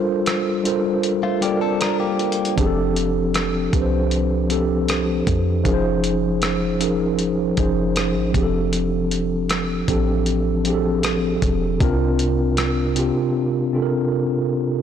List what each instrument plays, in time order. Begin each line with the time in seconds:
Already playing: tine electric piano G3 D4 F4 A4 A#4 C5
0.26 cross-stick, closed hi-hat
0.64 tine electric piano G3 D4 F4 A4 A#4 C5, closed hi-hat
1.03 closed hi-hat
1.23 clean electric guitar A3 F4
1.41 tine electric piano G3 D4 F4 A4 A#4 D5, clean electric guitar A#3 G4, closed hi-hat
1.61 clean electric guitar C4 A4
1.81 clean electric guitar D4 A#4, cross-stick, closed hi-hat
2.00 clean electric guitar A#3 G4
2.19 closed hi-hat
2.32 closed hi-hat
2.45 closed hi-hat
2.56 808-style bass F1, tine electric piano F3 C4 D4 G4 G#4, kick, closed hi-hat
2.66 tine electric piano A4
2.96 closed hi-hat
3.34 cross-stick, closed hi-hat
3.72 808-style bass C2, tine electric piano F3 C4 D4 G4 B4, kick, closed hi-hat
3.82 tine electric piano C5
4.11 closed hi-hat
4.48 tine electric piano F3 C4 D4 G4 A4, closed hi-hat
4.88 cross-stick, closed hi-hat
5.27 808-style bass F2, kick, closed hi-hat
5.64 808-style bass F1, tine electric piano F3 C#4 D#4 G#4 A#4, kick, closed hi-hat
5.74 tine electric piano C5
6.04 closed hi-hat
6.42 cross-stick, closed hi-hat
6.79 tine electric piano F3 C#4 D#4 G#4 A#4, closed hi-hat
7.19 closed hi-hat
7.56 808-style bass F1, tine electric piano F3 C#4 D#4 G#4 C5, kick, closed hi-hat
7.96 cross-stick, closed hi-hat
8.15 808-style bass G#1
8.33 808-style bass F1, tine electric piano F3 C4 D4 G4 G#4, kick, closed hi-hat
8.43 tine electric piano A4
8.73 closed hi-hat
9.11 closed hi-hat
9.49 cross-stick, closed hi-hat
9.87 808-style bass A1, tine electric piano F3 C4 D4 G4 A4, kick, closed hi-hat
10.26 closed hi-hat
10.64 tine electric piano F3 C4 D4 G4 G#4, closed hi-hat
10.74 tine electric piano A4
11.03 cross-stick, closed hi-hat
11.42 808-style bass E1, kick, closed hi-hat
11.79 808-style bass C2, tine electric piano C3 C4 D4 F4 A#4, kick, closed hi-hat
12.19 closed hi-hat
12.57 cross-stick, closed hi-hat
12.95 tine electric piano C3 C4 D4 F4 G4, closed hi-hat
13.72 tine electric piano C3 C4 D4 F4 A4
13.82 tine electric piano A#4